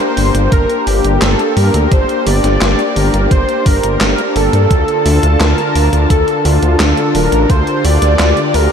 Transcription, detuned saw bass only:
0.17 G1
0.34 G1
0.52 G1
0.87 G1
1.04 G1
1.22 G1
1.57 G2
1.74 D2
1.92 G1
2.26 G1
2.44 G1
2.61 G1
2.96 G1
3.14 G1
3.31 G1
3.66 G1
3.83 G1
4.01 G1
4.36 G1
4.53 G2
4.71 D2
5.05 D2
5.23 D2
5.40 D2
5.75 D2
5.93 D2
6.10 D2
6.45 D2
6.62 D2
6.80 D2
7.15 D1
7.32 A1
7.50 D2
7.84 D2
8.02 D2
8.19 D2
8.54 D2

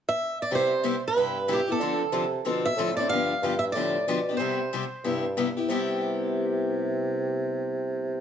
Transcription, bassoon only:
0.51 C3
1.15 G2
1.79 D3
2.12 C3
2.45 B2
2.76 A2
3.09 G2
3.42 G2
3.74 A2
4.07 B2
4.40 C3
5.04 G2
5.68 C3

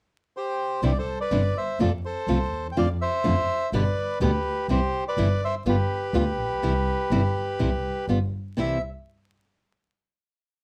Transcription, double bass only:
0.83 C2
1.31 G1
1.80 F2
2.27 C2
2.52 D#2
2.76 F2
3.25 F2
3.73 G1
4.21 D2
4.69 C2
5.17 G1
5.66 G1
6.14 D2
6.39 A#1
6.62 C2
7.11 G1
7.59 C2
8.08 G1
8.58 C2

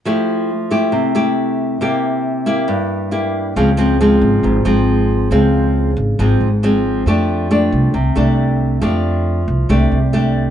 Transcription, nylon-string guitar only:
0.05 F3 A3 E4 G4
0.71 A3 E4 G4
0.92 C3
1.15 A3 E4 G4
1.81 C3 A#3 E4 G4
2.46 A#3 E4 G4
2.68 G2
3.11 A#3 E4 G4
3.56 C#3 F3 G#3 C4
3.77 F3 G#3 C4
4.01 F3 G#3 C4
4.44 G#2
4.65 F3 G#3 C4
5.31 C#3 F3 G#3 C4
6.19 G#2 F3 G#3 C4
6.63 F3 G#3 C4
7.07 F3 A3 D4 G4
7.51 A3 D4 G4
7.94 C3
8.16 A3 D4 G4
8.81 F3 A3 D4 G4
9.69 C3 A3 D4 G4
10.13 A3 D4 G4

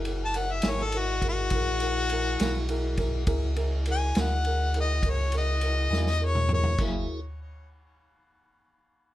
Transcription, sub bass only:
Already playing: F#1
0.65 G#1
1.52 A#1
2.40 B1
3.27 C#2
4.16 D2
5.03 C#2
5.90 E2
6.79 F#1

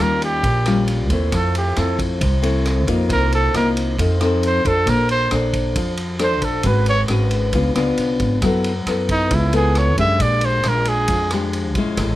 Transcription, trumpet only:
0.02 A#4
0.25 G4
1.35 A4
1.57 G4
1.79 A4
3.12 A#4
3.35 A4
3.57 A#4
4.47 C5
4.67 A4
4.89 A#4
5.11 C5
6.23 C5
6.44 A4
6.67 B4
6.89 C#5
9.11 D#4
9.34 E4
9.56 G#4
9.78 C#5
10.00 E5
10.22 D5
10.45 C5
10.68 A#4
10.89 G#4

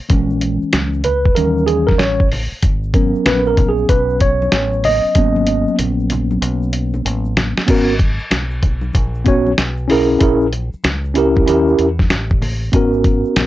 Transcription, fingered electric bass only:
0.10 A#1
0.63 muted fingered electric bass stroke
0.74 C#2
1.37 D#2
2.00 A1
2.52 muted fingered electric bass stroke
2.63 G#1
3.15 muted fingered electric bass stroke
3.26 A#1
3.89 B1
4.52 A1
5.05 muted fingered electric bass stroke
5.15 G#1
5.79 A#1
6.42 B1
7.05 A1
7.68 G#1
8.21 muted fingered electric bass stroke
8.32 B1
8.95 A#1
9.58 B1
10.21 A#1
10.74 muted fingered electric bass stroke
10.85 C#2
11.48 D#2
11.79 E2
12.11 A1
12.74 G#1
13.25 muted fingered electric bass stroke
13.36 A#1

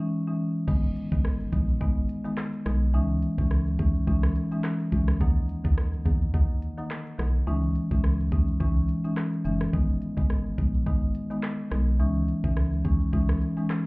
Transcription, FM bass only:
0.68 G#1
1.12 G#1
1.53 A#1
1.81 G#1
2.66 B1
2.94 C#2
3.38 C#2
3.79 D#2
4.07 C#2
4.92 C#2
5.21 D#2
5.65 D#2
6.06 E2
6.34 D#2
7.19 B1
7.47 C#2
7.91 C#2
8.32 D#2
8.60 C#2
9.45 F#1
9.73 G#1
10.17 G#1
10.58 A#1
10.87 G#1
11.71 B1
12.00 C#2
12.44 C#2
12.85 D#2
13.13 C#2

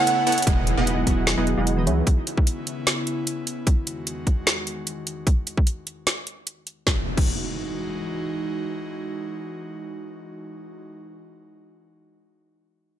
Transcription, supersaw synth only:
Already playing: B3 E4 A4 C#5 F#5
0.27 B3 E4 A4 C#5 F#5
0.47 B3 E4 G#4 D#5 F#5
0.77 B3 E4 G#4 D#5 F#5
1.07 B3 E4 G#4 D#5 F#5
1.38 B3 E4 G#4 D#5 F#5
1.58 B3 E4 G#4 D#5 F#5
1.87 B3 E4 G#4 C#5 E5

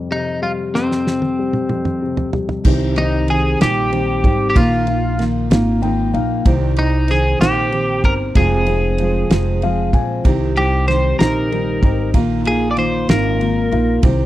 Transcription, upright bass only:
2.65 C2
3.61 A#1
4.24 G#1
4.56 A#1
5.51 G#1
6.14 A#1
6.46 C2
7.40 A#1
8.04 G1
8.35 F1
9.30 F1
9.93 A#1
10.25 C2
11.19 A#1
11.83 G#1
12.14 A#1
13.09 G#1
13.72 A#1
14.03 C2

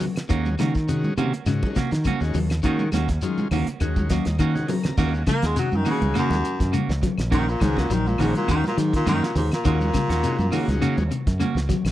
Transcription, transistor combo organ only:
0.30 D#3 G#3 C#4 F#4
0.88 D#3 G#3 C#4 F#4
1.47 D#3 G#3 C#4 F#4
2.21 D#3 G#3 C#4 F#4
2.63 D#3 G#3 C#4 F#4
3.23 D#3 G#3 C#4 F4
3.81 D#3 G#3 C#4 F#4
4.10 D#5
4.39 F#5
4.55 D#3 G#3 C#4 F#4
4.70 A#5
4.97 D#3 G#3 C#4 F#4
5.56 D#3 G#3 C#4 F#4
5.86 D#3 G#3 C#4 F#4
7.32 D#3 G#3 C#4 F#4
7.61 D#3 G#3 C#4 F#4
8.19 D#3 G#3 C#4 F#4
9.07 D#3 G#3 C#4 F#4
9.65 D#3 G#3 C#4 F#4
10.24 D#3 G#3 C#4 F#4
10.54 D#3 G#3 C#4 F#4

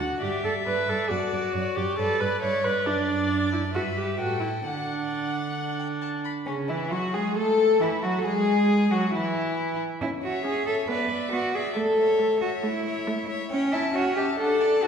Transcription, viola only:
0.00 F#4
0.22 G4
0.44 A4
0.67 B4
0.89 A4
1.10 F#4
1.76 G4
1.98 A4
2.20 B4
2.42 C#5
2.64 B4
2.86 D4
3.53 E4
3.75 F#4
3.97 G4
4.19 F#4
4.40 E4
4.64 D4
6.47 C#3
6.70 E3
6.92 F#3
7.14 G#3
7.37 A3
7.81 E3
8.03 F#3
8.26 G#3
8.92 F#3
9.14 E3
10.01 C#4
10.45 C#4
10.89 B3
11.33 B3
11.76 A3
12.19 A3
12.63 A3
13.07 A3
13.51 C#4
13.94 C#4
14.39 D4
14.83 D4

